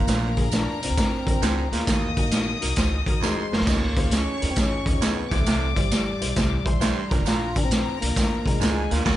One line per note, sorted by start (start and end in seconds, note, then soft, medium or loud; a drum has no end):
0.00 0.06 A1 medium
0.00 0.49 A#2 medium
0.00 0.50 A#3 loud
0.00 0.25 D4 medium
0.00 0.26 F4 medium
0.00 0.26 A#4 medium
0.00 1.83 A#4 loud
0.00 1.83 A#5 medium
0.07 0.64 A#1 loud
0.07 0.31 A#2 loud
0.07 snare loud
0.07 closed hi-hat loud
0.07 tambourine medium
0.36 0.45 D4 loud
0.36 0.46 F4 medium
0.36 0.46 G#4 loud
0.36 kick medium
0.36 closed hi-hat medium
0.52 0.69 D4 medium
0.52 0.81 D4 loud
0.52 0.70 F4 medium
0.52 0.70 A#4 medium
0.52 snare loud
0.52 closed hi-hat medium
0.52 tambourine medium
0.80 0.88 C2 medium
0.80 1.69 C4 loud
0.80 0.90 D4 medium
0.80 0.91 F4 medium
0.80 0.91 A#4 medium
0.80 closed hi-hat loud
0.90 0.96 D2 loud
0.96 1.14 D4 medium
0.96 1.14 F4 medium
0.96 1.14 A#4 medium
0.96 kick loud
0.96 snare loud
0.96 closed hi-hat medium
0.96 tambourine medium
1.13 muted upright bass stroke soft
1.25 1.39 A#1 medium
1.25 1.35 D4 medium
1.25 1.35 F4 medium
1.25 1.36 A#4 medium
1.25 kick loud
1.25 closed hi-hat medium
1.41 1.66 C#2 loud
1.41 1.66 G#2 loud
1.41 1.59 D4 loud
1.41 1.59 F4 loud
1.41 1.59 C5 loud
1.41 snare loud
1.41 closed hi-hat medium
1.41 tambourine medium
1.71 1.84 D2 medium
1.71 1.84 A#2 medium
1.71 2.58 A#3 medium
1.71 1.81 D4 medium
1.71 1.81 F4 medium
1.71 1.81 G#4 medium
1.71 snare soft
1.71 closed hi-hat medium
1.86 2.11 D#2 medium
1.86 2.11 D#2 loud
1.86 2.58 D#3 medium
1.86 2.04 D#4 loud
1.86 2.04 F#4 medium
1.86 2.05 A#4 loud
1.86 3.19 D#5 medium
1.86 3.19 D#6 loud
1.86 kick loud
1.86 snare loud
1.86 closed hi-hat loud
1.86 tambourine medium
2.16 2.53 A#1 medium
2.16 2.25 D#4 medium
2.16 2.25 F#4 medium
2.16 2.26 A#4 loud
2.16 kick medium
2.16 closed hi-hat medium
2.31 2.49 D#4 medium
2.31 2.49 F#4 medium
2.31 2.50 A#4 medium
2.31 snare loud
2.31 closed hi-hat loud
2.31 tambourine loud
2.61 2.75 C2 medium
2.61 2.70 D#4 medium
2.61 2.70 F#4 medium
2.61 2.71 A#4 loud
2.61 closed hi-hat medium
2.76 3.01 C#2 medium
2.76 2.94 D#4 loud
2.76 2.94 F#4 medium
2.76 2.95 C5 loud
2.76 kick loud
2.76 snare loud
2.76 closed hi-hat medium
2.76 tambourine medium
3.06 3.31 D#2 loud
3.06 3.16 D#4 medium
3.06 3.16 F#4 medium
3.06 3.17 A#4 loud
3.06 kick loud
3.06 closed hi-hat medium
3.21 3.45 F2 loud
3.21 3.54 G#3 medium
3.21 3.39 D#4 loud
3.21 3.40 F#4 loud
3.21 3.40 A#4 loud
3.21 3.66 C5 medium
3.21 3.66 C6 loud
3.21 snare medium
3.21 tambourine loud
3.51 3.58 F2 medium
3.51 3.63 F#2 medium
3.51 4.15 A#3 medium
3.51 3.61 D#4 medium
3.51 3.61 F#4 medium
3.51 3.61 A#4 medium
3.51 snare loud
3.60 3.66 C2 loud
3.60 snare loud
3.66 4.24 C#2 loud
3.66 3.90 D#2 medium
3.66 4.38 C#3 medium
3.66 3.85 C#4 medium
3.66 3.85 D#4 medium
3.66 3.85 F4 medium
3.66 3.85 G#4 medium
3.66 5.29 C#5 medium
3.66 3.85 D#5 loud
3.66 5.29 C#6 loud
3.66 kick loud
3.66 snare loud
3.66 tambourine medium
3.66 crash medium
3.96 4.05 C#4 medium
3.96 4.05 D#4 medium
3.96 4.06 F4 medium
3.96 4.06 G#4 medium
3.96 4.06 C5 loud
3.96 kick medium
3.96 closed hi-hat medium
4.11 4.29 C#4 medium
4.11 4.52 C#4 medium
4.11 4.29 D#4 medium
4.11 4.29 F4 medium
4.11 4.29 G#4 medium
4.11 4.30 D#5 medium
4.11 snare loud
4.11 closed hi-hat loud
4.11 tambourine medium
4.41 4.48 D#2 loud
4.41 4.50 C#4 medium
4.41 4.50 D#4 medium
4.41 4.50 F4 medium
4.41 4.50 G#4 medium
4.41 4.51 A#4 medium
4.41 closed hi-hat medium
4.50 4.56 F2 medium
4.50 4.58 C4 medium
4.56 4.74 C#4 medium
4.56 4.87 C#4 loud
4.56 4.74 D#4 medium
4.56 4.74 F4 medium
4.56 4.75 G#4 medium
4.56 4.75 D#5 medium
4.56 kick loud
4.56 snare loud
4.56 closed hi-hat medium
4.56 tambourine medium
4.72 muted upright bass stroke soft
4.86 4.98 D#2 medium
4.86 4.96 C#4 medium
4.86 5.03 C#4 medium
4.86 4.96 D#4 medium
4.86 4.96 F4 medium
4.86 4.96 G#4 medium
4.86 4.97 D#5 medium
4.86 kick loud
4.86 closed hi-hat medium
5.01 5.25 C#2 loud
5.01 5.25 F2 loud
5.01 5.37 B3 medium
5.01 5.19 C#4 loud
5.01 5.20 D#4 medium
5.01 5.20 F4 medium
5.01 5.20 G#4 loud
5.01 5.20 D#5 loud
5.01 snare loud
5.01 closed hi-hat medium
5.01 tambourine loud
5.31 5.44 C2 loud
5.31 5.44 G2 medium
5.31 5.88 C3 medium
5.31 5.64 E4 medium
5.31 5.65 G4 medium
5.31 5.65 C5 medium
5.31 6.64 D5 medium
5.31 6.64 D6 medium
5.31 kick loud
5.31 snare soft
5.31 closed hi-hat medium
5.39 5.74 A3 loud
5.46 5.70 C2 loud
5.46 5.70 C3 medium
5.46 snare loud
5.46 closed hi-hat loud
5.46 tambourine medium
5.76 6.12 G1 medium
5.76 7.16 G3 medium
5.76 5.85 E4 medium
5.76 5.85 G4 medium
5.76 5.86 C5 loud
5.76 kick medium
5.76 closed hi-hat medium
5.91 6.09 E4 medium
5.91 6.09 G4 medium
5.91 6.10 C5 medium
5.91 snare loud
5.91 closed hi-hat loud
5.91 tambourine medium
6.21 6.34 B1 medium
6.21 6.30 E4 medium
6.21 6.30 G4 medium
6.21 6.31 C5 medium
6.21 closed hi-hat medium
6.36 6.60 C2 loud
6.36 6.54 E4 loud
6.36 6.54 G4 medium
6.36 6.54 C5 loud
6.36 kick loud
6.36 snare loud
6.36 closed hi-hat medium
6.36 tambourine medium
6.65 6.90 B1 medium
6.65 6.75 E4 loud
6.65 6.75 G4 medium
6.65 7.10 C5 medium
6.65 6.75 C5 loud
6.65 7.10 C6 medium
6.65 kick loud
6.65 closed hi-hat medium
6.80 7.05 G2 loud
6.80 6.98 E4 loud
6.80 6.98 G4 loud
6.80 6.99 C5 loud
6.80 snare loud
6.80 closed hi-hat medium
6.80 tambourine medium
7.10 7.17 A#1 loud
7.10 7.23 A#2 medium
7.10 7.67 A#2 medium
7.10 7.15 C#4 medium
7.10 7.26 D4 loud
7.10 7.44 F4 medium
7.10 8.58 A#4 medium
7.10 7.45 A#4 medium
7.10 8.58 A#5 loud
7.10 kick loud
7.10 snare soft
7.10 closed hi-hat medium
7.16 7.26 A1 loud
7.16 7.47 D4 medium
7.25 7.84 A#1 loud
7.25 7.49 A#2 medium
7.25 7.57 F4 loud
7.25 snare loud
7.25 closed hi-hat loud
7.25 tambourine medium
7.55 7.65 D4 medium
7.55 7.64 D4 loud
7.55 7.65 F4 medium
7.55 7.65 A#4 loud
7.55 kick medium
7.55 closed hi-hat medium
7.65 7.99 C4 loud
7.71 7.89 D4 medium
7.71 7.89 F4 medium
7.71 7.89 A#4 medium
7.71 snare loud
7.71 closed hi-hat loud
7.71 tambourine medium
8.00 8.08 C2 medium
8.00 8.47 A#3 loud
8.00 8.10 D4 medium
8.00 8.10 F4 medium
8.00 8.10 A#4 loud
8.00 closed hi-hat medium
8.10 8.16 D2 loud
8.16 8.34 D4 medium
8.16 8.34 F4 medium
8.16 8.34 A#4 medium
8.16 kick loud
8.16 snare loud
8.16 closed hi-hat medium
8.16 tambourine medium
8.32 muted upright bass stroke soft
8.46 8.58 C2 medium
8.46 8.93 G#3 loud
8.46 8.55 D4 medium
8.46 8.55 F4 medium
8.46 8.56 A#4 loud
8.46 kick medium
8.46 closed hi-hat medium
8.60 8.85 C#2 loud
8.60 8.84 G#2 loud
8.60 8.78 D4 loud
8.60 8.79 F4 loud
8.60 9.05 G#4 medium
8.60 8.79 A#4 loud
8.60 9.05 G#5 loud
8.60 snare loud
8.60 closed hi-hat medium
8.60 tambourine loud
8.90 9.03 D2 loud
8.90 9.03 A#2 medium
8.90 9.05 A#3 loud
8.90 8.99 D4 medium
8.90 9.00 F4 medium
8.90 9.00 A#4 medium
8.90 snare soft
8.90 closed hi-hat medium
9.04 9.17 D#2 loud
9.04 9.17 D#3 medium
9.04 9.17 A#3 loud
9.04 9.17 D#4 medium
9.04 9.17 F#4 loud
9.04 9.17 A#4 loud
9.04 9.17 F#5 loud
9.04 kick loud
9.04 snare loud
9.04 crash medium